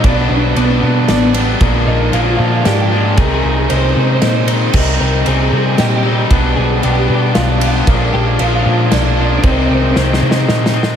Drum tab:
CC |------------------|------------------|------------------|x-----------------|
RD |x-----x-----x--x--|x-----x-----x-----|x-----x-----x--x--|------x-----x-----|
SD |------------o-----|------------o-----|------------o-----|------------o-----|
BD |o-----------------|o-----------------|o-----------------|o-----------------|

CC |------------------|------------------|------------------|
RD |x-----x-----x--x--|x-----x-----x-----|x-----------------|
SD |------------o-----|------------o-----|------o-o-o-o-o-o-|
BD |o-----------------|o-----------------|o-----------------|